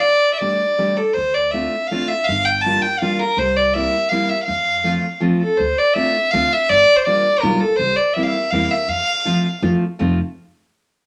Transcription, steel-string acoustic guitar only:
X:1
M:3/4
L:1/8
Q:"Swing" 1/4=163
K:F
V:1 name="Steel-string acoustic guitar"
z2 [G,A,DG] z [G,A,DG] z | z2 [A,CDF] z [A,CDF] z | z2 [G,B,DF] z [G,B,DF] z | z2 [G,B,CE] z [G,B,CE] z |
z2 [F,A,CF] z [F,A,CF] z | z2 [A,CDF] z [A,CDF] z | z2 [G,B,DF] z [G,B,DF] z | z2 [G,B,CE] z [G,B,CE] z |
z2 [F,A,CF] z [F,A,CF] z | [F,A,CF] z4 z |]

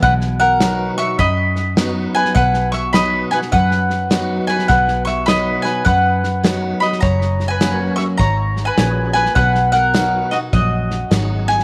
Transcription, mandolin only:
X:1
M:4/4
L:1/16
Q:"Swing" 1/4=103
K:B
V:1 name="Mandolin"
[Bf]2 [Af]4 [ec']2 [db]6 [Bg]2 | [Bf]2 [ec']2 [db]2 [Bg]2 [Bf]6 [Bg]2 | [Bf]2 [ec']2 [db]2 [Bg]2 [Bf]6 [db]2 | [ca]3 [Bg]3 [ec']2 [ca]3 [Bg]3 [Bg]2 |
[Bf]2 [Af]4 [Fd]2 [Fd]6 g2 |]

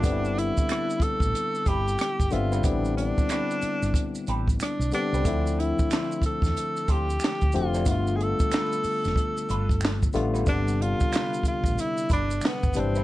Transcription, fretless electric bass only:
X:1
M:4/4
L:1/16
Q:"Swing 16ths" 1/4=92
K:C
V:1 name="Fretless electric bass" clef=bass
G,,,3 z4 A,,, z2 G,,,2 z G,,, G,,,2 | A,,,3 z4 G,,, z2 A,,,2 z B,,, z C,, | D,,3 z4 E,, z2 D,,2 z D,, F,,,2 | G,,,3 z4 F,,, z2 G,,,4 A,,,2 |
G,,,3 z4 A,,, z2 G,,,2 z G,,, G,,,2 |]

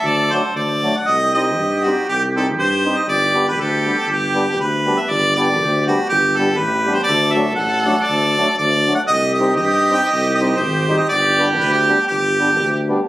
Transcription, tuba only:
X:1
M:2/4
L:1/8
Q:"Swing" 1/4=119
K:G
V:1 name="Tuba" clef=bass
D,,2 D,,2 | C,,2 G,,2 | C,,2 G,,2 | G,,,2 D,,2 |
G,,,2 D,,2 | G,,,2 D,,2 | G,,,2 A,,,2 | D,,2 A,,,2 |
D,,2 D,,2 | C,,2 G,,2 | C,,2 _A,,,2 | G,,,2 D,,2 |
G,,,2 D,,2 |]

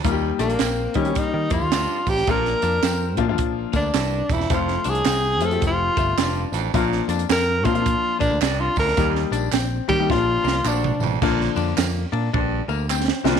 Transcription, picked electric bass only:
X:1
M:4/4
L:1/16
Q:"Swing" 1/4=107
K:Bb
V:1 name="Picked electric bass" clef=bass
E,,2 B,,,2 B,,,2 E,2 z E, F,, E,, D,, z A,,,2 | B,,,2 F,,2 F,,2 B,,2 B,,,2 D,,2 C,,2 =E,,,2 | F,,,2 C,,2 C,,2 F,,2 F,,,2 G,,,2 F,,,2 A,,,2 | B,,,2 F,,2 F,,2 B,,3 z B,,, D,, C,,2 D,,2 |
E,,2 B,,,2 B,,,2 E,2 B,,,2 C,,2 B,,,2 A,,,2 | B,,,2 F,,2 F,,2 B,,2 B,,,2 D,,4 C,,2 |]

